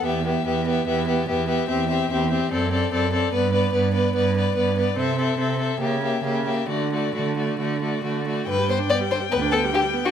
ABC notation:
X:1
M:4/4
L:1/16
Q:1/4=144
K:Edor
V:1 name="Violin"
e2 e2 e2 e2 e2 e2 e2 e2 | [K:G] e2 e2 e2 e2 d2 d2 d2 d2 | d2 d2 d2 d2 d2 d2 d2 d2 | e2 e2 e2 e2 e2 e2 e2 e2 |
d2 d2 d2 d2 d2 d2 d2 d2 | g16 |]
V:2 name="Violin"
G2 G2 G2 G2 G2 G2 G2 G2 | [K:G] G2 G2 G2 G2 A2 A2 A2 A2 | B2 B2 B2 B2 B2 B2 B2 B2 | A2 A2 A2 A2 G2 G2 G2 G2 |
F2 F2 F2 F2 F2 F2 F2 F2 | B2 c2 d2 c2 B2 A2 G3 F |]
V:3 name="Viola"
B,2 B,2 B,2 B,2 B,2 B,2 B,2 B,2 | [K:G] C2 C2 C2 C2 C2 C2 C2 C2 | B,2 B,2 B,2 B,2 B,2 B,2 B,2 B,2 | C2 C2 C2 C2 ^A,2 A,2 A,2 A,2 |
A,2 A,2 A,2 A,2 A,2 A,2 A,2 A,2 | D, G, B, D B, G, D, G, B, D B, G, D, G, B, D |]
V:4 name="Cello" clef=bass
E,,4 E,,4 E,,4 E,,4 | [K:G] E,,4 E,,4 F,,4 F,,4 | G,,4 G,,4 G,,4 G,,4 | C,4 C,4 ^C,4 C,4 |
D,4 D,4 D,4 D,4 | G,,4 z4 D,,4 z4 |]